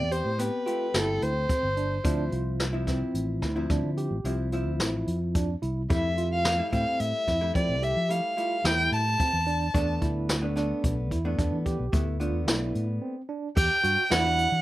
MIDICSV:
0, 0, Header, 1, 6, 480
1, 0, Start_track
1, 0, Tempo, 550459
1, 1784, Time_signature, 7, 2, 24, 8
1, 7542, Tempo, 545951
1, 12789, End_track
2, 0, Start_track
2, 0, Title_t, "Violin"
2, 0, Program_c, 0, 40
2, 0, Note_on_c, 0, 74, 76
2, 105, Note_on_c, 0, 72, 76
2, 118, Note_off_c, 0, 74, 0
2, 345, Note_on_c, 0, 71, 75
2, 358, Note_off_c, 0, 72, 0
2, 828, Note_on_c, 0, 69, 79
2, 841, Note_off_c, 0, 71, 0
2, 1068, Note_on_c, 0, 72, 84
2, 1081, Note_off_c, 0, 69, 0
2, 2027, Note_off_c, 0, 72, 0
2, 5153, Note_on_c, 0, 76, 72
2, 5485, Note_off_c, 0, 76, 0
2, 5513, Note_on_c, 0, 77, 81
2, 5844, Note_off_c, 0, 77, 0
2, 5869, Note_on_c, 0, 77, 81
2, 6109, Note_on_c, 0, 76, 81
2, 6122, Note_off_c, 0, 77, 0
2, 6586, Note_off_c, 0, 76, 0
2, 6591, Note_on_c, 0, 74, 75
2, 6832, Note_on_c, 0, 76, 83
2, 6845, Note_off_c, 0, 74, 0
2, 7067, Note_on_c, 0, 77, 80
2, 7080, Note_off_c, 0, 76, 0
2, 7552, Note_on_c, 0, 79, 92
2, 7565, Note_off_c, 0, 77, 0
2, 7788, Note_off_c, 0, 79, 0
2, 7794, Note_on_c, 0, 81, 96
2, 8717, Note_off_c, 0, 81, 0
2, 11868, Note_on_c, 0, 79, 96
2, 12343, Note_on_c, 0, 78, 98
2, 12356, Note_off_c, 0, 79, 0
2, 12789, Note_off_c, 0, 78, 0
2, 12789, End_track
3, 0, Start_track
3, 0, Title_t, "Tine electric piano"
3, 0, Program_c, 1, 4
3, 101, Note_on_c, 1, 67, 63
3, 430, Note_off_c, 1, 67, 0
3, 580, Note_on_c, 1, 65, 65
3, 745, Note_off_c, 1, 65, 0
3, 823, Note_on_c, 1, 64, 73
3, 1151, Note_off_c, 1, 64, 0
3, 1302, Note_on_c, 1, 60, 70
3, 1467, Note_off_c, 1, 60, 0
3, 1542, Note_on_c, 1, 62, 61
3, 1707, Note_off_c, 1, 62, 0
3, 1785, Note_on_c, 1, 62, 77
3, 1949, Note_off_c, 1, 62, 0
3, 2025, Note_on_c, 1, 65, 62
3, 2353, Note_off_c, 1, 65, 0
3, 2505, Note_on_c, 1, 60, 67
3, 2833, Note_off_c, 1, 60, 0
3, 2985, Note_on_c, 1, 64, 64
3, 3149, Note_off_c, 1, 64, 0
3, 3226, Note_on_c, 1, 62, 67
3, 3390, Note_off_c, 1, 62, 0
3, 3466, Note_on_c, 1, 67, 67
3, 3794, Note_off_c, 1, 67, 0
3, 3944, Note_on_c, 1, 65, 60
3, 4109, Note_off_c, 1, 65, 0
3, 4185, Note_on_c, 1, 64, 69
3, 4513, Note_off_c, 1, 64, 0
3, 4663, Note_on_c, 1, 62, 63
3, 4828, Note_off_c, 1, 62, 0
3, 4903, Note_on_c, 1, 64, 64
3, 5068, Note_off_c, 1, 64, 0
3, 5142, Note_on_c, 1, 64, 77
3, 5307, Note_off_c, 1, 64, 0
3, 5385, Note_on_c, 1, 65, 68
3, 5713, Note_off_c, 1, 65, 0
3, 5864, Note_on_c, 1, 60, 70
3, 6192, Note_off_c, 1, 60, 0
3, 6344, Note_on_c, 1, 64, 65
3, 6508, Note_off_c, 1, 64, 0
3, 6586, Note_on_c, 1, 60, 76
3, 6749, Note_off_c, 1, 60, 0
3, 6823, Note_on_c, 1, 67, 68
3, 7150, Note_off_c, 1, 67, 0
3, 7300, Note_on_c, 1, 65, 62
3, 7465, Note_off_c, 1, 65, 0
3, 7538, Note_on_c, 1, 64, 72
3, 7869, Note_off_c, 1, 64, 0
3, 8024, Note_on_c, 1, 60, 68
3, 8189, Note_off_c, 1, 60, 0
3, 8261, Note_on_c, 1, 62, 68
3, 8427, Note_off_c, 1, 62, 0
3, 8501, Note_on_c, 1, 62, 73
3, 8667, Note_off_c, 1, 62, 0
3, 8742, Note_on_c, 1, 64, 65
3, 9073, Note_off_c, 1, 64, 0
3, 9226, Note_on_c, 1, 62, 65
3, 9555, Note_off_c, 1, 62, 0
3, 9708, Note_on_c, 1, 64, 64
3, 9873, Note_off_c, 1, 64, 0
3, 9947, Note_on_c, 1, 62, 68
3, 10112, Note_off_c, 1, 62, 0
3, 10186, Note_on_c, 1, 67, 68
3, 10515, Note_off_c, 1, 67, 0
3, 10666, Note_on_c, 1, 65, 59
3, 10831, Note_off_c, 1, 65, 0
3, 10903, Note_on_c, 1, 64, 67
3, 11233, Note_off_c, 1, 64, 0
3, 11382, Note_on_c, 1, 60, 63
3, 11548, Note_off_c, 1, 60, 0
3, 11621, Note_on_c, 1, 62, 62
3, 11787, Note_off_c, 1, 62, 0
3, 11860, Note_on_c, 1, 67, 79
3, 12026, Note_off_c, 1, 67, 0
3, 12102, Note_on_c, 1, 66, 69
3, 12267, Note_off_c, 1, 66, 0
3, 12341, Note_on_c, 1, 64, 82
3, 12669, Note_off_c, 1, 64, 0
3, 12789, End_track
4, 0, Start_track
4, 0, Title_t, "Hollow-body jazz guitar"
4, 0, Program_c, 2, 26
4, 0, Note_on_c, 2, 59, 58
4, 0, Note_on_c, 2, 60, 56
4, 0, Note_on_c, 2, 67, 73
4, 258, Note_off_c, 2, 59, 0
4, 258, Note_off_c, 2, 60, 0
4, 259, Note_off_c, 2, 67, 0
4, 335, Note_on_c, 2, 59, 67
4, 340, Note_on_c, 2, 60, 54
4, 346, Note_on_c, 2, 67, 58
4, 547, Note_off_c, 2, 59, 0
4, 548, Note_off_c, 2, 60, 0
4, 548, Note_off_c, 2, 67, 0
4, 574, Note_on_c, 2, 67, 71
4, 579, Note_on_c, 2, 60, 50
4, 583, Note_on_c, 2, 57, 59
4, 1410, Note_off_c, 2, 57, 0
4, 1410, Note_off_c, 2, 60, 0
4, 1410, Note_off_c, 2, 67, 0
4, 1780, Note_on_c, 2, 53, 69
4, 1784, Note_on_c, 2, 60, 51
4, 1788, Note_on_c, 2, 64, 66
4, 2302, Note_off_c, 2, 53, 0
4, 2302, Note_off_c, 2, 60, 0
4, 2302, Note_off_c, 2, 64, 0
4, 2380, Note_on_c, 2, 64, 79
4, 2387, Note_on_c, 2, 60, 59
4, 2391, Note_on_c, 2, 53, 65
4, 2488, Note_off_c, 2, 53, 0
4, 2488, Note_off_c, 2, 64, 0
4, 2489, Note_off_c, 2, 60, 0
4, 2502, Note_on_c, 2, 64, 84
4, 2508, Note_on_c, 2, 60, 64
4, 2513, Note_on_c, 2, 53, 64
4, 3024, Note_off_c, 2, 53, 0
4, 3024, Note_off_c, 2, 60, 0
4, 3024, Note_off_c, 2, 64, 0
4, 3102, Note_on_c, 2, 64, 90
4, 3107, Note_on_c, 2, 60, 74
4, 3113, Note_on_c, 2, 53, 78
4, 3624, Note_off_c, 2, 60, 0
4, 3624, Note_off_c, 2, 64, 0
4, 3625, Note_off_c, 2, 53, 0
4, 3704, Note_on_c, 2, 53, 72
4, 3710, Note_on_c, 2, 60, 69
4, 3713, Note_on_c, 2, 64, 77
4, 3914, Note_off_c, 2, 53, 0
4, 3914, Note_off_c, 2, 64, 0
4, 3915, Note_off_c, 2, 60, 0
4, 3951, Note_on_c, 2, 53, 78
4, 3953, Note_on_c, 2, 60, 60
4, 3953, Note_on_c, 2, 64, 95
4, 4777, Note_off_c, 2, 60, 0
4, 4778, Note_off_c, 2, 53, 0
4, 4779, Note_off_c, 2, 64, 0
4, 5143, Note_on_c, 2, 55, 61
4, 5150, Note_on_c, 2, 57, 50
4, 5156, Note_on_c, 2, 64, 56
4, 5664, Note_off_c, 2, 55, 0
4, 5665, Note_off_c, 2, 57, 0
4, 5665, Note_off_c, 2, 64, 0
4, 5745, Note_on_c, 2, 64, 66
4, 5748, Note_on_c, 2, 57, 52
4, 5754, Note_on_c, 2, 55, 54
4, 5850, Note_off_c, 2, 57, 0
4, 5850, Note_off_c, 2, 64, 0
4, 5851, Note_off_c, 2, 55, 0
4, 5861, Note_on_c, 2, 64, 74
4, 5867, Note_on_c, 2, 57, 62
4, 5870, Note_on_c, 2, 55, 59
4, 6382, Note_off_c, 2, 55, 0
4, 6382, Note_off_c, 2, 64, 0
4, 6383, Note_off_c, 2, 57, 0
4, 6462, Note_on_c, 2, 64, 81
4, 6466, Note_on_c, 2, 57, 59
4, 6468, Note_on_c, 2, 55, 65
4, 6980, Note_off_c, 2, 55, 0
4, 6982, Note_off_c, 2, 57, 0
4, 6982, Note_off_c, 2, 64, 0
4, 7056, Note_on_c, 2, 55, 70
4, 7062, Note_on_c, 2, 57, 52
4, 7067, Note_on_c, 2, 64, 63
4, 7268, Note_off_c, 2, 55, 0
4, 7269, Note_off_c, 2, 57, 0
4, 7269, Note_off_c, 2, 64, 0
4, 7296, Note_on_c, 2, 64, 73
4, 7303, Note_on_c, 2, 57, 55
4, 7306, Note_on_c, 2, 55, 61
4, 8132, Note_off_c, 2, 55, 0
4, 8132, Note_off_c, 2, 64, 0
4, 8133, Note_off_c, 2, 57, 0
4, 8502, Note_on_c, 2, 57, 57
4, 8505, Note_on_c, 2, 62, 79
4, 8510, Note_on_c, 2, 59, 58
4, 9024, Note_off_c, 2, 59, 0
4, 9025, Note_off_c, 2, 62, 0
4, 9026, Note_off_c, 2, 57, 0
4, 9096, Note_on_c, 2, 59, 65
4, 9102, Note_on_c, 2, 62, 74
4, 9106, Note_on_c, 2, 57, 60
4, 9208, Note_off_c, 2, 57, 0
4, 9208, Note_off_c, 2, 59, 0
4, 9208, Note_off_c, 2, 62, 0
4, 9219, Note_on_c, 2, 59, 76
4, 9225, Note_on_c, 2, 62, 82
4, 9227, Note_on_c, 2, 57, 72
4, 9744, Note_off_c, 2, 57, 0
4, 9744, Note_off_c, 2, 59, 0
4, 9745, Note_off_c, 2, 62, 0
4, 9828, Note_on_c, 2, 59, 79
4, 9829, Note_on_c, 2, 62, 85
4, 9835, Note_on_c, 2, 57, 71
4, 10347, Note_off_c, 2, 62, 0
4, 10348, Note_off_c, 2, 57, 0
4, 10348, Note_off_c, 2, 59, 0
4, 10422, Note_on_c, 2, 57, 74
4, 10427, Note_on_c, 2, 59, 59
4, 10430, Note_on_c, 2, 64, 66
4, 10634, Note_off_c, 2, 57, 0
4, 10635, Note_off_c, 2, 59, 0
4, 10635, Note_off_c, 2, 64, 0
4, 10662, Note_on_c, 2, 59, 69
4, 10665, Note_on_c, 2, 62, 79
4, 10672, Note_on_c, 2, 57, 58
4, 11495, Note_off_c, 2, 57, 0
4, 11495, Note_off_c, 2, 59, 0
4, 11495, Note_off_c, 2, 62, 0
4, 12337, Note_on_c, 2, 55, 72
4, 12343, Note_on_c, 2, 62, 59
4, 12349, Note_on_c, 2, 66, 70
4, 12446, Note_off_c, 2, 55, 0
4, 12447, Note_off_c, 2, 62, 0
4, 12448, Note_off_c, 2, 66, 0
4, 12460, Note_on_c, 2, 66, 69
4, 12466, Note_on_c, 2, 62, 53
4, 12472, Note_on_c, 2, 55, 57
4, 12789, Note_off_c, 2, 55, 0
4, 12789, Note_off_c, 2, 62, 0
4, 12789, Note_off_c, 2, 66, 0
4, 12789, End_track
5, 0, Start_track
5, 0, Title_t, "Fingered electric bass"
5, 0, Program_c, 3, 33
5, 0, Note_on_c, 3, 40, 64
5, 184, Note_off_c, 3, 40, 0
5, 219, Note_on_c, 3, 45, 67
5, 424, Note_off_c, 3, 45, 0
5, 822, Note_on_c, 3, 31, 82
5, 1026, Note_off_c, 3, 31, 0
5, 1064, Note_on_c, 3, 38, 79
5, 1267, Note_off_c, 3, 38, 0
5, 1420, Note_on_c, 3, 31, 75
5, 1727, Note_off_c, 3, 31, 0
5, 1783, Note_on_c, 3, 38, 81
5, 1987, Note_off_c, 3, 38, 0
5, 2019, Note_on_c, 3, 36, 76
5, 2632, Note_off_c, 3, 36, 0
5, 2740, Note_on_c, 3, 33, 74
5, 2983, Note_off_c, 3, 33, 0
5, 2983, Note_on_c, 3, 38, 80
5, 3187, Note_off_c, 3, 38, 0
5, 3224, Note_on_c, 3, 38, 78
5, 3326, Note_off_c, 3, 38, 0
5, 3341, Note_on_c, 3, 50, 70
5, 3546, Note_off_c, 3, 50, 0
5, 3582, Note_on_c, 3, 33, 78
5, 3685, Note_off_c, 3, 33, 0
5, 3699, Note_on_c, 3, 36, 78
5, 4063, Note_off_c, 3, 36, 0
5, 4063, Note_on_c, 3, 38, 72
5, 4183, Note_off_c, 3, 38, 0
5, 4183, Note_on_c, 3, 33, 84
5, 4388, Note_off_c, 3, 33, 0
5, 4425, Note_on_c, 3, 41, 88
5, 4832, Note_off_c, 3, 41, 0
5, 4904, Note_on_c, 3, 36, 72
5, 5108, Note_off_c, 3, 36, 0
5, 5147, Note_on_c, 3, 41, 84
5, 5756, Note_off_c, 3, 41, 0
5, 5865, Note_on_c, 3, 45, 73
5, 5967, Note_off_c, 3, 45, 0
5, 6105, Note_on_c, 3, 45, 78
5, 6207, Note_off_c, 3, 45, 0
5, 6344, Note_on_c, 3, 41, 81
5, 6547, Note_off_c, 3, 41, 0
5, 6585, Note_on_c, 3, 53, 76
5, 6707, Note_on_c, 3, 36, 64
5, 6720, Note_off_c, 3, 53, 0
5, 6909, Note_off_c, 3, 36, 0
5, 6944, Note_on_c, 3, 53, 70
5, 7147, Note_off_c, 3, 53, 0
5, 7536, Note_on_c, 3, 40, 83
5, 7743, Note_off_c, 3, 40, 0
5, 7777, Note_on_c, 3, 45, 86
5, 7984, Note_off_c, 3, 45, 0
5, 8141, Note_on_c, 3, 40, 76
5, 8449, Note_off_c, 3, 40, 0
5, 8505, Note_on_c, 3, 40, 82
5, 8709, Note_off_c, 3, 40, 0
5, 8746, Note_on_c, 3, 38, 70
5, 9358, Note_off_c, 3, 38, 0
5, 9466, Note_on_c, 3, 35, 87
5, 9707, Note_off_c, 3, 35, 0
5, 9707, Note_on_c, 3, 40, 73
5, 9911, Note_off_c, 3, 40, 0
5, 9946, Note_on_c, 3, 40, 79
5, 10049, Note_off_c, 3, 40, 0
5, 10066, Note_on_c, 3, 52, 73
5, 10271, Note_off_c, 3, 52, 0
5, 10305, Note_on_c, 3, 35, 72
5, 10409, Note_off_c, 3, 35, 0
5, 10426, Note_on_c, 3, 38, 81
5, 10789, Note_off_c, 3, 38, 0
5, 10789, Note_on_c, 3, 40, 68
5, 10908, Note_off_c, 3, 40, 0
5, 10908, Note_on_c, 3, 35, 81
5, 11111, Note_off_c, 3, 35, 0
5, 11148, Note_on_c, 3, 45, 72
5, 11352, Note_off_c, 3, 45, 0
5, 11866, Note_on_c, 3, 40, 77
5, 11968, Note_off_c, 3, 40, 0
5, 12104, Note_on_c, 3, 43, 83
5, 12207, Note_off_c, 3, 43, 0
5, 12345, Note_on_c, 3, 40, 86
5, 12649, Note_off_c, 3, 40, 0
5, 12704, Note_on_c, 3, 52, 80
5, 12789, Note_off_c, 3, 52, 0
5, 12789, End_track
6, 0, Start_track
6, 0, Title_t, "Drums"
6, 102, Note_on_c, 9, 42, 57
6, 189, Note_off_c, 9, 42, 0
6, 341, Note_on_c, 9, 38, 31
6, 341, Note_on_c, 9, 42, 75
6, 429, Note_off_c, 9, 38, 0
6, 429, Note_off_c, 9, 42, 0
6, 585, Note_on_c, 9, 42, 51
6, 672, Note_off_c, 9, 42, 0
6, 821, Note_on_c, 9, 38, 91
6, 821, Note_on_c, 9, 42, 66
6, 908, Note_off_c, 9, 38, 0
6, 908, Note_off_c, 9, 42, 0
6, 1064, Note_on_c, 9, 42, 54
6, 1151, Note_off_c, 9, 42, 0
6, 1302, Note_on_c, 9, 42, 71
6, 1303, Note_on_c, 9, 36, 88
6, 1389, Note_off_c, 9, 42, 0
6, 1390, Note_off_c, 9, 36, 0
6, 1542, Note_on_c, 9, 42, 48
6, 1630, Note_off_c, 9, 42, 0
6, 1784, Note_on_c, 9, 36, 92
6, 1784, Note_on_c, 9, 42, 78
6, 1871, Note_off_c, 9, 42, 0
6, 1872, Note_off_c, 9, 36, 0
6, 2024, Note_on_c, 9, 42, 47
6, 2111, Note_off_c, 9, 42, 0
6, 2265, Note_on_c, 9, 38, 85
6, 2265, Note_on_c, 9, 42, 65
6, 2352, Note_off_c, 9, 38, 0
6, 2352, Note_off_c, 9, 42, 0
6, 2504, Note_on_c, 9, 38, 31
6, 2504, Note_on_c, 9, 42, 52
6, 2505, Note_on_c, 9, 36, 59
6, 2591, Note_off_c, 9, 38, 0
6, 2591, Note_off_c, 9, 42, 0
6, 2592, Note_off_c, 9, 36, 0
6, 2743, Note_on_c, 9, 42, 70
6, 2830, Note_off_c, 9, 42, 0
6, 2982, Note_on_c, 9, 38, 30
6, 2982, Note_on_c, 9, 42, 49
6, 2985, Note_on_c, 9, 36, 67
6, 3070, Note_off_c, 9, 38, 0
6, 3070, Note_off_c, 9, 42, 0
6, 3072, Note_off_c, 9, 36, 0
6, 3225, Note_on_c, 9, 38, 29
6, 3225, Note_on_c, 9, 42, 60
6, 3226, Note_on_c, 9, 36, 88
6, 3312, Note_off_c, 9, 38, 0
6, 3312, Note_off_c, 9, 42, 0
6, 3313, Note_off_c, 9, 36, 0
6, 3465, Note_on_c, 9, 42, 51
6, 3552, Note_off_c, 9, 42, 0
6, 3704, Note_on_c, 9, 42, 71
6, 3791, Note_off_c, 9, 42, 0
6, 3942, Note_on_c, 9, 42, 48
6, 4029, Note_off_c, 9, 42, 0
6, 4184, Note_on_c, 9, 38, 92
6, 4184, Note_on_c, 9, 42, 70
6, 4271, Note_off_c, 9, 38, 0
6, 4271, Note_off_c, 9, 42, 0
6, 4424, Note_on_c, 9, 42, 54
6, 4512, Note_off_c, 9, 42, 0
6, 4663, Note_on_c, 9, 42, 71
6, 4666, Note_on_c, 9, 36, 88
6, 4750, Note_off_c, 9, 42, 0
6, 4753, Note_off_c, 9, 36, 0
6, 4903, Note_on_c, 9, 42, 50
6, 4991, Note_off_c, 9, 42, 0
6, 5146, Note_on_c, 9, 42, 73
6, 5147, Note_on_c, 9, 36, 106
6, 5233, Note_off_c, 9, 42, 0
6, 5234, Note_off_c, 9, 36, 0
6, 5385, Note_on_c, 9, 42, 52
6, 5472, Note_off_c, 9, 42, 0
6, 5623, Note_on_c, 9, 38, 92
6, 5623, Note_on_c, 9, 42, 73
6, 5710, Note_off_c, 9, 38, 0
6, 5710, Note_off_c, 9, 42, 0
6, 5865, Note_on_c, 9, 42, 54
6, 5866, Note_on_c, 9, 36, 68
6, 5952, Note_off_c, 9, 42, 0
6, 5953, Note_off_c, 9, 36, 0
6, 6102, Note_on_c, 9, 42, 72
6, 6189, Note_off_c, 9, 42, 0
6, 6345, Note_on_c, 9, 38, 27
6, 6345, Note_on_c, 9, 42, 54
6, 6346, Note_on_c, 9, 36, 63
6, 6432, Note_off_c, 9, 38, 0
6, 6432, Note_off_c, 9, 42, 0
6, 6433, Note_off_c, 9, 36, 0
6, 6584, Note_on_c, 9, 42, 62
6, 6585, Note_on_c, 9, 36, 90
6, 6671, Note_off_c, 9, 42, 0
6, 6672, Note_off_c, 9, 36, 0
6, 6824, Note_on_c, 9, 42, 53
6, 6911, Note_off_c, 9, 42, 0
6, 7064, Note_on_c, 9, 42, 67
6, 7151, Note_off_c, 9, 42, 0
6, 7303, Note_on_c, 9, 42, 50
6, 7391, Note_off_c, 9, 42, 0
6, 7541, Note_on_c, 9, 38, 95
6, 7541, Note_on_c, 9, 42, 69
6, 7629, Note_off_c, 9, 38, 0
6, 7629, Note_off_c, 9, 42, 0
6, 7783, Note_on_c, 9, 42, 47
6, 7871, Note_off_c, 9, 42, 0
6, 8023, Note_on_c, 9, 42, 69
6, 8024, Note_on_c, 9, 36, 89
6, 8111, Note_off_c, 9, 42, 0
6, 8112, Note_off_c, 9, 36, 0
6, 8266, Note_on_c, 9, 42, 47
6, 8354, Note_off_c, 9, 42, 0
6, 8506, Note_on_c, 9, 36, 99
6, 8507, Note_on_c, 9, 42, 74
6, 8594, Note_off_c, 9, 36, 0
6, 8595, Note_off_c, 9, 42, 0
6, 8745, Note_on_c, 9, 42, 55
6, 8746, Note_on_c, 9, 36, 73
6, 8833, Note_off_c, 9, 42, 0
6, 8834, Note_off_c, 9, 36, 0
6, 8985, Note_on_c, 9, 38, 94
6, 8985, Note_on_c, 9, 42, 73
6, 9073, Note_off_c, 9, 38, 0
6, 9073, Note_off_c, 9, 42, 0
6, 9227, Note_on_c, 9, 38, 33
6, 9227, Note_on_c, 9, 42, 59
6, 9315, Note_off_c, 9, 38, 0
6, 9315, Note_off_c, 9, 42, 0
6, 9468, Note_on_c, 9, 36, 90
6, 9468, Note_on_c, 9, 42, 80
6, 9556, Note_off_c, 9, 36, 0
6, 9556, Note_off_c, 9, 42, 0
6, 9708, Note_on_c, 9, 36, 59
6, 9709, Note_on_c, 9, 42, 57
6, 9796, Note_off_c, 9, 36, 0
6, 9797, Note_off_c, 9, 42, 0
6, 9948, Note_on_c, 9, 36, 84
6, 9948, Note_on_c, 9, 38, 27
6, 9948, Note_on_c, 9, 42, 64
6, 10036, Note_off_c, 9, 36, 0
6, 10036, Note_off_c, 9, 38, 0
6, 10036, Note_off_c, 9, 42, 0
6, 10188, Note_on_c, 9, 36, 64
6, 10188, Note_on_c, 9, 42, 52
6, 10276, Note_off_c, 9, 36, 0
6, 10276, Note_off_c, 9, 42, 0
6, 10426, Note_on_c, 9, 42, 70
6, 10428, Note_on_c, 9, 36, 89
6, 10514, Note_off_c, 9, 42, 0
6, 10516, Note_off_c, 9, 36, 0
6, 10669, Note_on_c, 9, 42, 53
6, 10756, Note_off_c, 9, 42, 0
6, 10907, Note_on_c, 9, 38, 95
6, 10907, Note_on_c, 9, 42, 72
6, 10995, Note_off_c, 9, 38, 0
6, 10995, Note_off_c, 9, 42, 0
6, 11148, Note_on_c, 9, 42, 51
6, 11236, Note_off_c, 9, 42, 0
6, 11867, Note_on_c, 9, 36, 107
6, 11868, Note_on_c, 9, 49, 91
6, 11955, Note_off_c, 9, 36, 0
6, 11956, Note_off_c, 9, 49, 0
6, 12106, Note_on_c, 9, 42, 59
6, 12194, Note_off_c, 9, 42, 0
6, 12346, Note_on_c, 9, 38, 98
6, 12346, Note_on_c, 9, 42, 72
6, 12433, Note_off_c, 9, 38, 0
6, 12433, Note_off_c, 9, 42, 0
6, 12586, Note_on_c, 9, 42, 62
6, 12673, Note_off_c, 9, 42, 0
6, 12789, End_track
0, 0, End_of_file